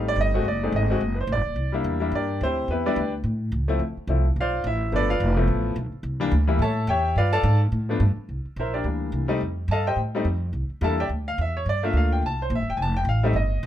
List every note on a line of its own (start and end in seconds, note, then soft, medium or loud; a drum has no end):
0.00 0.15 A1 medium
0.00 0.30 G3 medium
0.00 0.31 A3 medium
0.00 0.31 C4 medium
0.00 0.31 D#4 medium
0.08 0.18 D5 loud
0.16 0.44 G1 medium
0.21 0.60 D#5 loud
0.34 0.44 G#3 medium
0.34 0.44 A3 medium
0.34 0.45 C4 medium
0.34 0.45 F#4 medium
0.45 0.72 F#1 medium
0.45 0.73 D5 medium
0.63 0.88 G#3 medium
0.63 0.88 A3 medium
0.63 0.89 C4 medium
0.63 0.89 D#4 medium
0.72 1.00 G#1 loud
0.72 1.16 D#5 medium
0.90 1.00 G#3 medium
0.90 1.00 A3 medium
0.90 1.00 C4 medium
0.90 1.01 F#4 medium
1.00 1.27 F#1 medium
1.15 1.17 B4 medium
1.21 1.30 C5 medium
1.27 1.36 A1 loud
1.32 1.46 F#1 medium
1.32 1.72 D5 medium
1.47 1.55 D#1 medium
1.56 1.83 C2 medium
1.72 1.99 G3 medium
1.72 1.99 A#3 medium
1.72 2.00 D4 medium
1.72 2.00 E4 medium
1.84 2.11 E2 medium
2.00 2.11 G3 medium
2.00 2.11 A#3 medium
2.00 2.12 D4 medium
2.00 2.12 E4 medium
2.12 2.39 G2 medium
2.12 2.40 G4 medium
2.12 2.40 A#4 medium
2.12 2.40 D5 medium
2.16 2.40 D4 medium
2.41 2.67 D2 medium
2.41 2.68 C4 medium
2.41 2.68 E4 medium
2.41 2.69 G4 medium
2.41 2.68 C5 medium
2.68 2.95 E2 medium
2.68 2.84 B3 medium
2.68 2.85 G4 medium
2.68 2.85 B4 medium
2.72 2.86 E4 medium
2.86 2.96 G3 medium
2.86 2.96 B3 medium
2.86 3.12 D4 medium
2.86 2.97 E4 medium
2.86 3.12 G4 medium
2.86 3.12 B4 medium
2.86 3.12 D5 medium
2.96 3.23 D2 loud
3.24 3.51 A2 medium
3.52 3.79 C#2 loud
3.68 3.79 F3 medium
3.68 3.79 A3 medium
3.68 3.79 C4 medium
3.68 3.79 E4 medium
3.79 3.95 D2 medium
3.97 muted upright bass stroke soft
4.07 4.35 C2 loud
4.07 4.23 F3 medium
4.07 4.24 A3 medium
4.07 4.24 C4 medium
4.07 4.24 E4 medium
4.36 4.63 B1 medium
4.40 4.64 F4 medium
4.40 4.65 C5 medium
4.40 4.65 D5 medium
4.40 4.65 F5 medium
4.64 4.91 A1 loud
4.64 4.92 E4 medium
4.64 4.92 E5 medium
4.92 5.19 G1 medium
4.92 5.07 F3 medium
4.92 5.07 A3 medium
4.92 5.07 B3 medium
4.92 5.08 D4 medium
4.92 5.09 D5 medium
4.96 5.10 A4 medium
4.96 5.09 B4 medium
5.10 5.36 F4 medium
5.10 5.36 B4 medium
5.10 5.36 D5 medium
5.10 5.36 F5 loud
5.20 5.47 F1 loud
5.37 5.74 F3 medium
5.37 5.74 A3 medium
5.37 5.74 B3 medium
5.37 5.74 E4 medium
5.47 5.75 A1 medium
5.76 5.91 B1 medium
5.92 muted upright bass stroke soft
6.03 6.31 C2 medium
6.20 6.31 E3 medium
6.20 6.31 G3 medium
6.20 6.31 A#3 medium
6.20 6.31 D4 loud
6.31 6.58 D2 loud
6.47 6.58 E3 medium
6.47 6.59 G3 medium
6.47 6.59 A#3 medium
6.47 6.59 E4 medium
6.59 6.87 A2 medium
6.59 6.87 A4 medium
6.59 6.87 C#5 medium
6.59 6.87 E5 medium
6.59 6.87 A5 medium
6.87 7.15 E2 loud
6.87 7.15 G4 medium
6.87 7.15 C#5 medium
6.87 7.15 E5 medium
6.87 7.15 G5 loud
7.16 7.43 G2 medium
7.16 7.33 F4 medium
7.16 7.33 B4 medium
7.16 7.32 D5 medium
7.16 7.32 F5 medium
7.33 7.59 A4 medium
7.33 7.59 D5 medium
7.33 7.59 F5 medium
7.33 7.59 A5 loud
7.43 7.71 G#2 loud
7.72 7.99 A2 medium
7.89 7.99 F3 medium
7.89 8.00 A3 medium
7.89 8.00 B3 medium
7.89 8.00 D4 medium
8.00 8.15 G2 loud
8.16 muted upright bass stroke soft
8.29 8.44 C2 medium
8.45 muted upright bass stroke soft
8.56 8.83 A#1 medium
8.56 8.74 E4 medium
8.56 8.73 A#4 medium
8.56 8.74 C5 medium
8.56 8.74 E5 medium
8.74 8.84 D4 medium
8.74 8.85 G4 medium
8.74 8.85 A#4 medium
8.74 8.85 D5 medium
8.84 9.11 D2 medium
8.84 9.26 E3 soft
8.84 9.26 G3 soft
8.84 9.26 A#3 soft
8.84 9.26 D4 medium
9.12 9.39 C2 medium
9.28 9.39 G3 medium
9.28 9.39 A3 medium
9.28 9.39 C4 medium
9.28 9.39 D#4 medium
9.41 9.67 F2 medium
9.68 9.95 G2 medium
9.68 9.86 A5 medium
9.72 9.87 A4 medium
9.72 9.86 D#5 medium
9.72 9.86 F5 medium
9.87 9.98 G4 medium
9.87 9.97 C5 medium
9.87 9.98 D#5 medium
9.87 9.97 G5 medium
9.96 10.24 A2 medium
10.15 10.24 G3 medium
10.15 10.25 A3 medium
10.15 10.25 C4 medium
10.15 10.25 D#4 medium
10.25 10.52 F2 medium
10.53 10.68 C2 medium
10.70 muted upright bass stroke soft
10.81 11.08 E2 loud
10.81 10.96 G3 medium
10.81 10.96 A#3 medium
10.81 10.97 D4 medium
10.81 10.97 E4 medium
10.81 10.99 A5 medium
10.85 10.99 A4 medium
11.00 11.06 G4 medium
11.00 11.07 D5 medium
11.00 11.06 E5 medium
11.00 11.06 G5 medium
11.09 11.36 D2 medium
11.28 11.38 F5 medium
11.38 11.65 E2 loud
11.38 11.55 E5 medium
11.57 11.67 C#5 medium
11.66 11.93 G2 medium
11.66 11.83 D5 medium
11.83 12.20 A3 medium
11.83 12.20 A#3 medium
11.83 12.20 D4 medium
11.83 12.20 F4 medium
11.83 11.95 E5 medium
11.93 12.21 D2 medium
11.93 12.11 F5 medium
12.12 12.22 G5 medium
12.22 12.49 C2 medium
12.22 12.40 A5 medium
12.42 12.51 C5 medium
12.50 12.59 A#1 loud
12.55 12.68 G1 medium
12.55 12.69 E5 medium
12.68 12.77 E1 medium
12.68 12.79 G5 medium
12.77 13.04 F1 medium
12.77 12.79 G#5 medium
12.82 12.96 A5 loud
12.97 13.07 G5 loud
13.05 13.33 A1 loud
13.09 13.23 F5 medium
13.23 13.33 G3 medium
13.23 13.34 A3 medium
13.23 13.34 C4 medium
13.23 13.34 D#4 medium
13.23 13.34 E5 medium
13.33 13.61 G1 medium
13.33 13.66 D#5 medium
13.63 13.66 F1 loud